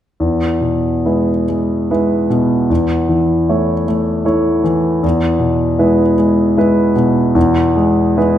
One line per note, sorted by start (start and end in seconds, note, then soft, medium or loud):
0.20 2.66 E2 soft
0.61 1.30 B2 soft
1.05 1.44 G#3 soft
1.05 1.44 E4 soft
1.05 1.45 B4 soft
1.49 1.89 G#3 soft
1.91 2.27 G#3 soft
1.91 2.27 E4 soft
1.91 2.27 B4 soft
2.30 2.70 B2 soft
2.70 5.00 E2 soft
3.09 3.72 E3 soft
3.49 3.84 A3 soft
3.49 3.84 E4 soft
3.49 3.85 C#5 soft
3.88 4.23 A3 soft
4.25 4.61 A3 soft
4.25 4.61 E4 soft
4.25 4.61 C#5 soft
4.64 5.03 E3 soft
5.03 7.31 E2 soft
5.39 6.02 B2 soft
5.79 6.14 G#3 soft
5.79 6.14 E4 soft
5.79 6.14 B4 soft
6.18 6.56 G#3 soft
6.57 6.92 G#3 soft
6.57 6.92 E4 soft
6.57 6.93 B4 soft
6.96 7.59 B2 soft
7.35 8.38 E2 medium
7.76 8.16 G#3 soft
8.17 8.38 G#3 soft
8.17 8.38 E4 soft
8.17 8.38 B4 soft